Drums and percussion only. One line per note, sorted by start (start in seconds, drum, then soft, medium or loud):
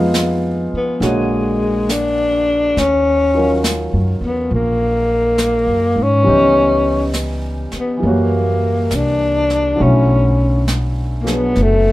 0.14 snare soft
0.14 hi-hat pedal soft
1.02 brush sweep soft
1.02 snare soft
1.89 snare soft
1.89 hi-hat pedal soft
2.77 brush sweep soft
2.77 snare soft
3.64 snare soft
3.64 hi-hat pedal soft
4.51 brush sweep soft
5.38 snare soft
5.38 hi-hat pedal soft
6.26 brush sweep soft
7.14 snare soft
7.14 hi-hat pedal soft
7.72 snare soft
8.02 brush sweep soft
8.91 snare soft
8.91 hi-hat pedal soft
9.50 snare soft
9.79 brush sweep soft
10.68 snare soft
10.68 hi-hat pedal soft
11.27 snare soft
11.56 brush sweep soft
11.56 snare soft